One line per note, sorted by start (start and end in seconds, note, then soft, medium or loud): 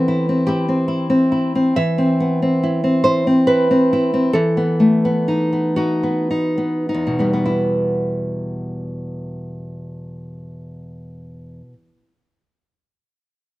0.00 1.72 E3 soft
0.00 0.87 B3 soft
0.00 0.28 C4 soft
0.00 0.43 A4 medium
0.08 0.47 E4 soft
0.29 0.67 C4 soft
0.47 0.87 E4 soft
0.47 1.72 G4 medium
0.69 1.09 C4 soft
0.88 1.31 E4 soft
1.10 1.54 C4 soft
1.32 1.76 E4 soft
1.55 1.77 C4 soft
1.76 4.30 E3 soft
1.76 2.98 E5 medium
1.98 2.41 C4 soft
2.20 3.46 B3 soft
2.42 2.82 C4 soft
2.63 3.04 E4 soft
2.84 3.26 C4 soft
3.04 3.47 E4 soft
3.04 3.44 C5 medium
3.27 3.70 C4 soft
3.47 3.92 E4 soft
3.47 4.31 B4 medium
3.71 4.12 C4 soft
3.93 4.35 E4 soft
4.14 4.35 C4 soft
4.33 6.94 E3 soft
4.33 5.73 A4 medium
4.57 5.04 B3 soft
4.80 6.29 A3 soft
5.05 5.51 B3 soft
5.28 5.76 D#4 soft
5.53 6.02 B3 soft
5.76 6.29 D#4 soft
5.76 7.20 F#4 medium
6.03 6.56 B3 soft
6.31 6.88 D#4 soft
6.58 7.18 B3 soft
6.89 7.47 D#4 soft
6.94 11.61 E2 soft
7.07 11.73 B2 soft
7.19 11.86 G3 soft
7.19 7.32 B3 soft
7.33 12.00 B3 soft
7.46 12.12 E4 soft